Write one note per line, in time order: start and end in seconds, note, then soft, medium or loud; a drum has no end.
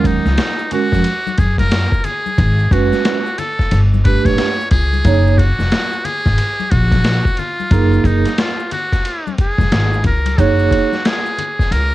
0.00 0.18 D#2 loud
0.00 0.22 F#3 medium
0.00 0.22 G#3 medium
0.00 0.22 C#4 medium
0.00 0.23 A#4 medium
0.04 0.72 D#4 medium
0.04 kick medium
0.04 ride medium
0.04 low conga medium
0.04 maracas soft
0.25 0.36 C#2 medium
0.25 snare soft
0.25 high conga soft
0.25 maracas medium
0.38 snare loud
0.38 hi-hat pedal soft
0.38 ride medium
0.38 high conga soft
0.38 maracas medium
0.59 maracas soft
0.71 0.97 G#3 medium
0.71 0.98 C#4 medium
0.71 0.98 F#4 medium
0.71 1.40 F#4 loud
0.71 0.98 A#4 medium
0.71 ride soft
0.71 low conga medium
0.71 maracas soft
0.92 1.03 F2 medium
0.92 kick medium
0.92 snare soft
0.92 maracas soft
1.04 ride medium
1.04 maracas medium
1.27 high conga medium
1.27 maracas soft
1.38 1.85 F#2 medium
1.38 1.59 G#4 medium
1.38 kick loud
1.38 ride medium
1.38 maracas soft
1.58 2.06 A#4 loud
1.58 kick medium
1.58 snare soft
1.58 ride soft
1.58 high conga medium
1.58 maracas soft
1.72 snare loud
1.72 hi-hat pedal soft
1.72 ride medium
1.72 maracas medium
1.92 kick medium
1.92 maracas soft
2.04 2.74 G#4 medium
2.04 ride medium
2.04 low conga medium
2.04 maracas soft
2.26 high conga medium
2.26 maracas soft
2.38 2.67 G#1 loud
2.38 kick loud
2.38 ride medium
2.38 maracas medium
2.59 maracas soft
2.71 2.89 F#1 medium
2.71 3.13 G#3 medium
2.71 3.13 C#4 medium
2.71 3.14 F#4 medium
2.71 3.40 F#4 loud
2.71 3.14 B4 medium
2.71 kick loud
2.71 ride medium
2.71 low conga medium
2.71 maracas soft
2.93 snare soft
2.93 high conga soft
2.93 maracas soft
3.05 snare loud
3.05 hi-hat pedal soft
3.05 ride medium
3.05 high conga soft
3.05 maracas medium
3.26 maracas soft
3.38 3.80 A4 medium
3.38 ride medium
3.38 low conga medium
3.38 maracas soft
3.59 kick medium
3.59 snare soft
3.59 maracas soft
3.71 4.18 G1 loud
3.71 ride medium
3.71 maracas medium
3.94 high conga medium
3.94 maracas soft
4.04 4.47 A3 medium
4.04 4.47 D4 medium
4.04 4.47 G4 medium
4.04 4.27 B4 loud
4.04 4.47 B4 medium
4.04 kick loud
4.04 ride medium
4.04 maracas soft
4.25 4.36 A1 medium
4.25 4.71 C#5 loud
4.25 kick medium
4.25 snare soft
4.25 ride soft
4.25 high conga medium
4.25 maracas medium
4.38 snare medium
4.38 hi-hat pedal soft
4.38 ride medium
4.38 maracas medium
4.61 maracas soft
4.71 5.00 C#2 medium
4.71 5.40 G#4 loud
4.71 kick medium
4.71 ride medium
4.71 low conga medium
4.71 maracas soft
4.93 high conga medium
4.93 maracas soft
5.04 5.51 F#1 loud
5.04 5.31 A#3 medium
5.04 5.31 D#4 medium
5.04 5.32 G#4 medium
5.04 5.32 C#5 medium
5.04 kick loud
5.04 ride medium
5.04 maracas medium
5.27 maracas soft
5.38 6.07 F#4 loud
5.38 kick medium
5.38 ride medium
5.38 low conga medium
5.38 maracas soft
5.59 5.70 F1 medium
5.59 snare soft
5.59 high conga medium
5.59 maracas soft
5.72 snare loud
5.72 hi-hat pedal soft
5.72 ride medium
5.72 high conga soft
5.72 maracas medium
5.93 maracas soft
6.05 6.72 G#4 loud
6.05 ride soft
6.05 low conga medium
6.05 maracas soft
6.26 6.37 G#1 medium
6.26 kick medium
6.26 snare soft
6.26 maracas soft
6.38 ride medium
6.38 maracas medium
6.60 high conga medium
6.60 maracas soft
6.71 7.18 A#1 medium
6.71 7.41 F#4 loud
6.71 kick loud
6.71 ride medium
6.71 maracas soft
6.92 kick medium
6.92 snare soft
6.92 ride soft
6.92 high conga medium
6.92 maracas soft
7.04 snare loud
7.04 hi-hat pedal soft
7.04 ride medium
7.04 maracas soft
7.25 kick medium
7.25 maracas soft
7.37 8.07 F4 medium
7.37 ride soft
7.37 low conga medium
7.37 maracas soft
7.60 high conga medium
7.60 maracas soft
7.71 8.00 F#1 loud
7.71 8.22 A#3 medium
7.71 8.22 D#4 medium
7.71 8.22 G#4 medium
7.71 8.23 A#4 medium
7.71 kick loud
7.71 ride medium
7.71 maracas medium
7.93 maracas soft
8.04 8.22 F#1 medium
8.04 8.41 D#4 medium
8.04 kick medium
8.04 ride medium
8.04 low conga medium
8.04 maracas soft
8.26 snare soft
8.26 ride soft
8.26 high conga soft
8.26 maracas soft
8.38 8.72 F4 medium
8.38 snare loud
8.38 hi-hat pedal soft
8.38 ride medium
8.38 high conga soft
8.38 maracas medium
8.60 maracas soft
8.71 9.35 F#4 medium
8.71 ride soft
8.71 low conga medium
8.71 maracas soft
8.92 kick medium
8.92 snare soft
8.92 ride soft
8.92 maracas soft
9.05 ride medium
9.05 maracas soft
9.27 high conga medium
9.27 maracas soft
9.38 10.02 G#4 medium
9.38 kick loud
9.38 ride medium
9.38 maracas soft
9.58 9.69 F1 medium
9.58 kick medium
9.58 snare soft
9.58 high conga medium
9.58 maracas soft
9.72 10.00 G#1 medium
9.72 snare medium
9.72 hi-hat pedal soft
9.72 ride medium
9.72 maracas medium
9.94 maracas soft
10.04 10.33 C#2 medium
10.04 10.41 A#4 medium
10.04 kick medium
10.04 ride medium
10.04 low conga medium
10.04 maracas soft
10.26 ride soft
10.26 high conga medium
10.26 maracas soft
10.38 10.67 F#1 loud
10.38 10.88 A#3 medium
10.38 10.89 D#4 medium
10.38 11.08 F#4 medium
10.38 10.89 G#4 medium
10.38 10.89 C#5 medium
10.38 kick loud
10.38 ride medium
10.38 maracas medium
10.59 maracas soft
10.71 kick medium
10.71 ride medium
10.71 low conga medium
10.71 maracas soft
10.93 snare soft
10.93 high conga soft
10.93 maracas soft
11.05 11.74 G#4 medium
11.05 snare loud
11.05 hi-hat pedal soft
11.05 ride medium
11.05 high conga soft
11.05 maracas soft
11.26 maracas soft
11.38 ride medium
11.38 low conga medium
11.38 maracas soft
11.59 kick medium
11.59 snare soft
11.59 maracas medium
11.71 11.95 C#2 medium
11.71 11.95 A#4 loud
11.71 ride medium
11.71 maracas medium